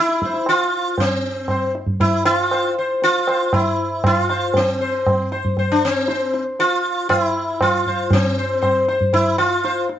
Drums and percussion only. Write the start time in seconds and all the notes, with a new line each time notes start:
0.09 tabla te
0.22 tabla ke
0.34 tabla te
0.46 tabla na
0.98 tabla tin, tabla ge
1.48 tabla na, tabla ge
1.75 tabla te
1.87 tabla ge
2.00 tabla tin, tabla ge
2.25 tabla na
2.51 tabla na
3.02 tabla tin
3.27 tabla na
3.53 tabla na, tabla ge
4.04 tabla na, tabla ge
4.29 tabla te
4.54 tabla tin, tabla ge
5.06 tabla na, tabla ge
5.32 tabla te
5.45 tabla ge
5.57 tabla tin, tabla ge
6.08 tabla te
6.34 tabla te
6.59 tabla tin
7.10 tabla na, tabla ge
7.61 tabla na, tabla ge
7.86 tabla ge
8.11 tabla tin, tabla ge
8.63 tabla na, tabla ge
8.88 tabla te
9.01 tabla ge
9.13 tabla tin, tabla ge
9.38 tabla na
9.64 tabla te
9.89 tabla te